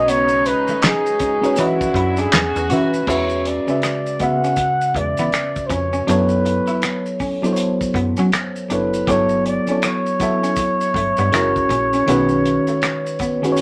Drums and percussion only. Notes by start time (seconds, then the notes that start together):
0.08 closed hi-hat, maracas
0.28 maracas
0.45 closed hi-hat, maracas
0.67 maracas
0.82 finger snap, snare, clap, closed hi-hat, maracas
1.06 maracas
1.19 kick, closed hi-hat, maracas
1.44 maracas
1.56 closed hi-hat, maracas
1.81 kick, maracas
1.94 kick, closed hi-hat
2.17 closed hi-hat, maracas
2.32 finger snap, snare, clap, closed hi-hat, maracas
2.56 maracas
2.70 closed hi-hat, maracas
2.94 maracas
3.07 kick, crash, maracas
3.29 maracas
3.45 closed hi-hat, maracas
3.68 maracas
3.82 finger snap, cross-stick, closed hi-hat, maracas
4.06 maracas
4.19 kick, closed hi-hat, maracas
4.44 closed hi-hat, maracas
4.56 kick, closed hi-hat, maracas
4.81 maracas
4.94 kick, closed hi-hat
5.17 closed hi-hat, maracas
5.32 finger snap, cross-stick, closed hi-hat, maracas
5.56 kick, maracas
5.69 kick, closed hi-hat, maracas
5.93 maracas
6.08 closed hi-hat, maracas
6.29 maracas
6.45 closed hi-hat, maracas
6.67 closed hi-hat, maracas
6.82 finger snap, cross-stick, closed hi-hat, maracas
7.06 maracas
7.19 kick, open hi-hat, maracas
7.44 closed hi-hat, maracas
7.56 closed hi-hat, maracas
7.81 kick, maracas
7.94 kick, closed hi-hat
8.17 closed hi-hat, maracas
8.32 finger snap, cross-stick, closed hi-hat, maracas
8.56 maracas
8.70 closed hi-hat, maracas
8.94 closed hi-hat, maracas
9.07 kick, closed hi-hat, maracas
9.29 maracas
9.46 closed hi-hat, maracas
9.67 closed hi-hat, maracas
9.82 finger snap, cross-stick, closed hi-hat, maracas
10.06 maracas
10.20 kick, closed hi-hat, maracas
10.44 closed hi-hat, maracas
10.56 kick, closed hi-hat, maracas
10.81 maracas
10.94 kick, closed hi-hat
11.17 closed hi-hat, maracas
11.33 finger snap, cross-stick, closed hi-hat, maracas
11.56 kick, maracas
11.69 kick, closed hi-hat, maracas
11.93 closed hi-hat, maracas
12.08 closed hi-hat, maracas
12.29 maracas
12.45 closed hi-hat, maracas
12.67 closed hi-hat, maracas
12.82 finger snap, cross-stick, closed hi-hat, maracas
13.06 maracas
13.19 kick, closed hi-hat, maracas
13.44 closed hi-hat, maracas
13.56 closed hi-hat, maracas